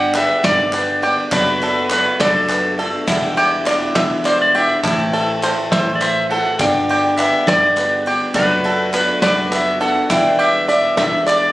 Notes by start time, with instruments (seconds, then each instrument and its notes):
Already playing: fingered electric bass G1, steel-string acoustic guitar G2 D3 G3 B3 D4 G4, harmonium D3 G3 B3 G4, five-string banjo D4 G4, clean electric guitar F#5
0.15 steel-string acoustic guitar G3 B3 D4 G4, five-string banjo B4, clean electric guitar E5, clap, ride, tambourine
0.30 clap
0.43 fingered electric bass G1, steel-string acoustic guitar G2 D3 G3 B3 D4 G4, five-string banjo D5, clean electric guitar D5, kick, snare, ride
0.73 five-string banjo B4, clap, ride, tambourine
1.02 steel-string acoustic guitar G3 B3 D4 G4, five-string banjo G4, clap, ride
1.18 clap
1.32 fingered electric bass F#1, steel-string acoustic guitar F#3 B3 D4 A4, harmonium A3 F#4, five-string banjo D4, clean electric guitar B4, kick, clap, ride, tambourine
1.47 clap, tambourine
1.61 five-string banjo A4, clap, ride
1.90 steel-string acoustic guitar F#3 B3 D4 A4, five-string banjo B4, clean electric guitar B4, clap, ride, tambourine
2.06 clap
2.19 fingered electric bass F#1, steel-string acoustic guitar F#3 B3 D4 A4, clean electric guitar A4, five-string banjo D5, kick, snare, ride
2.49 five-string banjo B4, clap, ride, tambourine
2.78 steel-string acoustic guitar B3 D4 A4, five-string banjo A4, clap, ride
2.94 clap
3.07 fingered electric bass E1, steel-string acoustic guitar E2 B2 E3 G3 D4 E4, harmonium D3 G3 E4, five-string banjo E4, kick, clap, ride, tambourine
3.22 clap, tambourine
3.37 five-string banjo G4, clap, ride
3.66 steel-string acoustic guitar E3 G3 D4 E4, five-string banjo D5, clap, ride, tambourine
3.82 clap
3.95 fingered electric bass E1, steel-string acoustic guitar E2 B2 E3 G3 D4 E4, five-string banjo E5, kick, snare, ride
4.25 clean electric guitar C5, five-string banjo D5, clap, ride, tambourine
4.42 clean electric guitar D5
4.54 steel-string acoustic guitar E3 G3 D4 E4, five-string banjo G4, clean electric guitar E5, ride
4.70 clap
4.83 fingered electric bass A1, steel-string acoustic guitar A2 E3 A3 C4 E4, harmonium C3 E3 A3, five-string banjo E4, clean electric guitar A5, kick, clap, ride, tambourine
4.99 clap
5.13 five-string banjo A4, ride
5.43 steel-string acoustic guitar E3 A3 C4 E4, five-string banjo C5, clap, ride, tambourine
5.72 fingered electric bass A1, steel-string acoustic guitar A2 E3 A3 C4 E4, clean electric guitar C5, five-string banjo E5, kick, snare, ride
5.95 clean electric guitar D5
6.01 five-string banjo C5, clean electric guitar E5, clap, ride, tambourine
6.30 steel-string acoustic guitar A3 C4 E4, five-string banjo A4, clean electric guitar F#5, clap, ride
6.46 clap
6.59 fingered electric bass G1, steel-string acoustic guitar G2 D3 G3 B3 D4 G4, harmonium D3 G3 B3 G4, five-string banjo D4, clean electric guitar G5, kick, clap, ride, tambourine
6.74 clap, tambourine
6.89 five-string banjo G4, ride
7.17 steel-string acoustic guitar G3 B3 D4 G4, five-string banjo B4, clean electric guitar E5, clap, ride, tambourine
7.34 clap
7.47 fingered electric bass G1, steel-string acoustic guitar G2 D3 G3 D4 G4, clean electric guitar D5, five-string banjo D5, kick, snare, ride
7.76 five-string banjo B4, clap, ride, tambourine
8.04 steel-string acoustic guitar G3 B3 D4 G4, five-string banjo G4, clap, ride
8.21 clap
8.34 fingered electric bass F#1, steel-string acoustic guitar F#3 B3 D4 A4, harmonium A3 F#4, five-string banjo D4, clean electric guitar B4, kick, clap, ride, tambourine
8.49 clap, tambourine
8.64 five-string banjo A4, clap, ride
8.92 steel-string acoustic guitar F#3 B3 D4 A4, clean electric guitar B4, five-string banjo B4, clap, ride, tambourine
9.09 clap
9.22 fingered electric bass F#1, steel-string acoustic guitar F#3 B3 D4 A4, clean electric guitar B4, five-string banjo D5, kick, snare, ride
9.51 five-string banjo B4, clean electric guitar E5, clap, ride, tambourine
9.80 steel-string acoustic guitar B3 D4 A4, five-string banjo A4, clean electric guitar F#5, clap, ride
9.96 clap
10.10 fingered electric bass E1, steel-string acoustic guitar E2 B2 E3 G3 D4 E4, harmonium D3 G3 B3 E4, five-string banjo E4, clean electric guitar G5, kick, clap, ride, tambourine
10.25 clap, tambourine
10.39 five-string banjo G4, clean electric guitar E5, clap, ride
10.68 steel-string acoustic guitar E3 G3 D4 E4, five-string banjo D5, clean electric guitar E5, ride, tambourine
10.84 clap
10.97 fingered electric bass E1, steel-string acoustic guitar E2 B2 E3 G3 D4 E4, five-string banjo E5, clean electric guitar E5, kick, snare, ride
11.27 five-string banjo D5, clean electric guitar D5, clap, ride, tambourine